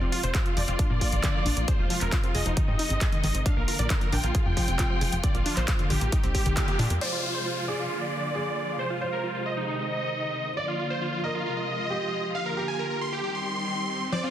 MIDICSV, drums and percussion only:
0, 0, Header, 1, 2, 480
1, 0, Start_track
1, 0, Tempo, 444444
1, 1814, Time_signature, 4, 2, 24, 8
1, 15447, End_track
2, 0, Start_track
2, 0, Title_t, "Drums"
2, 134, Note_on_c, 9, 46, 98
2, 242, Note_off_c, 9, 46, 0
2, 254, Note_on_c, 9, 42, 53
2, 362, Note_off_c, 9, 42, 0
2, 374, Note_on_c, 9, 36, 112
2, 374, Note_on_c, 9, 39, 106
2, 374, Note_on_c, 9, 42, 70
2, 482, Note_off_c, 9, 36, 0
2, 482, Note_off_c, 9, 39, 0
2, 482, Note_off_c, 9, 42, 0
2, 494, Note_on_c, 9, 42, 35
2, 602, Note_off_c, 9, 42, 0
2, 614, Note_on_c, 9, 46, 89
2, 722, Note_off_c, 9, 46, 0
2, 734, Note_on_c, 9, 42, 47
2, 842, Note_off_c, 9, 42, 0
2, 854, Note_on_c, 9, 36, 115
2, 854, Note_on_c, 9, 42, 69
2, 962, Note_off_c, 9, 36, 0
2, 962, Note_off_c, 9, 42, 0
2, 1094, Note_on_c, 9, 36, 57
2, 1094, Note_on_c, 9, 46, 100
2, 1202, Note_off_c, 9, 36, 0
2, 1202, Note_off_c, 9, 46, 0
2, 1214, Note_on_c, 9, 42, 47
2, 1322, Note_off_c, 9, 42, 0
2, 1334, Note_on_c, 9, 36, 108
2, 1334, Note_on_c, 9, 39, 110
2, 1334, Note_on_c, 9, 42, 73
2, 1442, Note_off_c, 9, 36, 0
2, 1442, Note_off_c, 9, 39, 0
2, 1442, Note_off_c, 9, 42, 0
2, 1574, Note_on_c, 9, 46, 88
2, 1682, Note_off_c, 9, 46, 0
2, 1694, Note_on_c, 9, 42, 49
2, 1802, Note_off_c, 9, 42, 0
2, 1814, Note_on_c, 9, 36, 111
2, 1814, Note_on_c, 9, 42, 80
2, 1922, Note_off_c, 9, 36, 0
2, 1922, Note_off_c, 9, 42, 0
2, 2054, Note_on_c, 9, 46, 96
2, 2162, Note_off_c, 9, 46, 0
2, 2174, Note_on_c, 9, 39, 35
2, 2174, Note_on_c, 9, 42, 53
2, 2282, Note_off_c, 9, 39, 0
2, 2282, Note_off_c, 9, 42, 0
2, 2294, Note_on_c, 9, 36, 115
2, 2294, Note_on_c, 9, 39, 105
2, 2294, Note_on_c, 9, 42, 74
2, 2402, Note_off_c, 9, 36, 0
2, 2402, Note_off_c, 9, 39, 0
2, 2402, Note_off_c, 9, 42, 0
2, 2414, Note_on_c, 9, 42, 35
2, 2522, Note_off_c, 9, 42, 0
2, 2534, Note_on_c, 9, 46, 87
2, 2642, Note_off_c, 9, 46, 0
2, 2654, Note_on_c, 9, 42, 50
2, 2762, Note_off_c, 9, 42, 0
2, 2774, Note_on_c, 9, 36, 111
2, 2774, Note_on_c, 9, 42, 73
2, 2882, Note_off_c, 9, 36, 0
2, 2882, Note_off_c, 9, 42, 0
2, 3014, Note_on_c, 9, 46, 96
2, 3122, Note_off_c, 9, 46, 0
2, 3134, Note_on_c, 9, 42, 48
2, 3242, Note_off_c, 9, 42, 0
2, 3254, Note_on_c, 9, 36, 112
2, 3254, Note_on_c, 9, 39, 108
2, 3254, Note_on_c, 9, 42, 79
2, 3362, Note_off_c, 9, 36, 0
2, 3362, Note_off_c, 9, 39, 0
2, 3362, Note_off_c, 9, 42, 0
2, 3374, Note_on_c, 9, 42, 34
2, 3482, Note_off_c, 9, 42, 0
2, 3494, Note_on_c, 9, 46, 86
2, 3602, Note_off_c, 9, 46, 0
2, 3614, Note_on_c, 9, 42, 51
2, 3722, Note_off_c, 9, 42, 0
2, 3734, Note_on_c, 9, 42, 79
2, 3735, Note_on_c, 9, 36, 104
2, 3842, Note_off_c, 9, 42, 0
2, 3843, Note_off_c, 9, 36, 0
2, 3974, Note_on_c, 9, 46, 98
2, 4082, Note_off_c, 9, 46, 0
2, 4094, Note_on_c, 9, 42, 57
2, 4202, Note_off_c, 9, 42, 0
2, 4214, Note_on_c, 9, 39, 116
2, 4214, Note_on_c, 9, 42, 82
2, 4215, Note_on_c, 9, 36, 118
2, 4322, Note_off_c, 9, 39, 0
2, 4322, Note_off_c, 9, 42, 0
2, 4323, Note_off_c, 9, 36, 0
2, 4334, Note_on_c, 9, 42, 37
2, 4442, Note_off_c, 9, 42, 0
2, 4455, Note_on_c, 9, 46, 87
2, 4563, Note_off_c, 9, 46, 0
2, 4575, Note_on_c, 9, 42, 50
2, 4683, Note_off_c, 9, 42, 0
2, 4694, Note_on_c, 9, 42, 75
2, 4695, Note_on_c, 9, 36, 108
2, 4802, Note_off_c, 9, 42, 0
2, 4803, Note_off_c, 9, 36, 0
2, 4934, Note_on_c, 9, 46, 90
2, 4935, Note_on_c, 9, 36, 56
2, 5042, Note_off_c, 9, 46, 0
2, 5043, Note_off_c, 9, 36, 0
2, 5054, Note_on_c, 9, 42, 52
2, 5162, Note_off_c, 9, 42, 0
2, 5174, Note_on_c, 9, 39, 111
2, 5174, Note_on_c, 9, 42, 78
2, 5175, Note_on_c, 9, 36, 107
2, 5282, Note_off_c, 9, 39, 0
2, 5282, Note_off_c, 9, 42, 0
2, 5283, Note_off_c, 9, 36, 0
2, 5414, Note_on_c, 9, 46, 81
2, 5522, Note_off_c, 9, 46, 0
2, 5534, Note_on_c, 9, 42, 52
2, 5642, Note_off_c, 9, 42, 0
2, 5654, Note_on_c, 9, 42, 85
2, 5655, Note_on_c, 9, 36, 112
2, 5762, Note_off_c, 9, 42, 0
2, 5763, Note_off_c, 9, 36, 0
2, 5774, Note_on_c, 9, 42, 38
2, 5882, Note_off_c, 9, 42, 0
2, 5894, Note_on_c, 9, 46, 97
2, 6002, Note_off_c, 9, 46, 0
2, 6014, Note_on_c, 9, 39, 38
2, 6014, Note_on_c, 9, 42, 56
2, 6122, Note_off_c, 9, 39, 0
2, 6122, Note_off_c, 9, 42, 0
2, 6134, Note_on_c, 9, 39, 118
2, 6134, Note_on_c, 9, 42, 82
2, 6135, Note_on_c, 9, 36, 117
2, 6242, Note_off_c, 9, 39, 0
2, 6242, Note_off_c, 9, 42, 0
2, 6243, Note_off_c, 9, 36, 0
2, 6254, Note_on_c, 9, 42, 39
2, 6362, Note_off_c, 9, 42, 0
2, 6374, Note_on_c, 9, 46, 91
2, 6482, Note_off_c, 9, 46, 0
2, 6494, Note_on_c, 9, 42, 53
2, 6602, Note_off_c, 9, 42, 0
2, 6614, Note_on_c, 9, 36, 113
2, 6614, Note_on_c, 9, 42, 82
2, 6722, Note_off_c, 9, 36, 0
2, 6722, Note_off_c, 9, 42, 0
2, 6734, Note_on_c, 9, 42, 40
2, 6842, Note_off_c, 9, 42, 0
2, 6854, Note_on_c, 9, 36, 60
2, 6854, Note_on_c, 9, 46, 98
2, 6962, Note_off_c, 9, 36, 0
2, 6962, Note_off_c, 9, 46, 0
2, 6975, Note_on_c, 9, 42, 57
2, 7083, Note_off_c, 9, 42, 0
2, 7094, Note_on_c, 9, 36, 112
2, 7095, Note_on_c, 9, 39, 116
2, 7095, Note_on_c, 9, 42, 83
2, 7202, Note_off_c, 9, 36, 0
2, 7203, Note_off_c, 9, 39, 0
2, 7203, Note_off_c, 9, 42, 0
2, 7215, Note_on_c, 9, 42, 36
2, 7323, Note_off_c, 9, 42, 0
2, 7335, Note_on_c, 9, 46, 84
2, 7443, Note_off_c, 9, 46, 0
2, 7455, Note_on_c, 9, 42, 55
2, 7563, Note_off_c, 9, 42, 0
2, 7575, Note_on_c, 9, 49, 78
2, 7683, Note_off_c, 9, 49, 0
2, 15447, End_track
0, 0, End_of_file